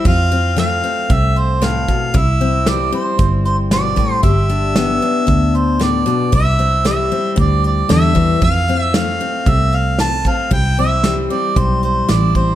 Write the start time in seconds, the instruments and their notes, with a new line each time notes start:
Already playing: steel-string acoustic guitar C4
0.05 steel-string acoustic guitar F2 F4, fingered electric bass F2, harmonica F5, kick, closed hi-hat
0.31 steel-string acoustic guitar C4, closed hi-hat
0.56 steel-string acoustic guitar F3 A3, harmonica F5, snare, closed hi-hat
0.84 steel-string acoustic guitar C4, closed hi-hat
1.10 fingered electric bass C2, steel-string acoustic guitar C3, harmonica E5, kick, closed hi-hat
1.36 harmonica C5, closed hi-hat
1.62 steel-string acoustic guitar A2, harmonica F5, snare, closed hi-hat
1.88 steel-string acoustic guitar B2, kick, closed hi-hat
2.14 fingered electric bass C2, steel-string acoustic guitar C3 E4, harmonica E5, kick, closed hi-hat
2.41 steel-string acoustic guitar C4, closed hi-hat
2.66 steel-string acoustic guitar E3 G3, harmonica D5, snare, closed hi-hat
2.92 steel-string acoustic guitar C4, harmonica C5, closed hi-hat
3.19 fingered electric bass G1, steel-string acoustic guitar G2, kick, closed hi-hat
3.45 harmonica C5, closed hi-hat
3.71 steel-string acoustic guitar B2, harmonica D5, snare, closed hi-hat
3.96 steel-string acoustic guitar A2, kick, closed hi-hat
4.23 fingered electric bass G1, steel-string acoustic guitar G2 G4, harmonica E5, kick, closed hi-hat
4.50 steel-string acoustic guitar D4, closed hi-hat
4.76 steel-string acoustic guitar D3 B3, snare, closed hi-hat
5.02 steel-string acoustic guitar D4, closed hi-hat
5.27 fingered electric bass D2, steel-string acoustic guitar G2, kick, closed hi-hat
5.55 harmonica C5, closed hi-hat
5.79 steel-string acoustic guitar A2, harmonica D5, snare, closed hi-hat
6.06 steel-string acoustic guitar B2, closed hi-hat
6.32 fingered electric bass C2, steel-string acoustic guitar C3 E4, harmonica E5, kick, closed hi-hat
6.59 steel-string acoustic guitar C4, closed hi-hat
6.85 steel-string acoustic guitar E3 G3, harmonica E5, snare, closed hi-hat
7.11 steel-string acoustic guitar C4, closed hi-hat
7.36 fingered electric bass D2, steel-string acoustic guitar G2, harmonica D5, kick, closed hi-hat
7.64 harmonica D5, closed hi-hat
7.89 fingered electric bass E2, steel-string acoustic guitar D3, harmonica E5, snare, closed hi-hat
8.15 steel-string acoustic guitar E3, kick, closed hi-hat
8.42 steel-string acoustic guitar F2 F4, fingered electric bass F2, harmonica F5, kick, closed hi-hat
8.68 steel-string acoustic guitar C4, closed hi-hat
8.79 harmonica E5
8.94 steel-string acoustic guitar F3 A3, harmonica F5, snare, closed hi-hat
9.20 steel-string acoustic guitar C4, closed hi-hat
9.46 fingered electric bass C2, steel-string acoustic guitar C3, harmonica E5, kick, closed hi-hat
9.72 harmonica F5, closed hi-hat
9.99 steel-string acoustic guitar F3 F4, harmonica A5, snare, closed hi-hat
10.24 steel-string acoustic guitar C4, harmonica F5, kick, closed hi-hat
10.51 fingered electric bass C2, steel-string acoustic guitar C3 E4, harmonica G5, kick, closed hi-hat
10.77 steel-string acoustic guitar C4, harmonica E5, closed hi-hat
11.04 steel-string acoustic guitar E3 G3, snare, closed hi-hat
11.30 steel-string acoustic guitar C4, harmonica D5, closed hi-hat
11.56 fingered electric bass B1, steel-string acoustic guitar G2, harmonica C5, kick, closed hi-hat
11.83 harmonica C5, closed hi-hat
12.08 fingered electric bass A1, steel-string acoustic guitar E3 E4, harmonica D5, snare, closed hi-hat
12.35 steel-string acoustic guitar C4, harmonica C5, kick, closed hi-hat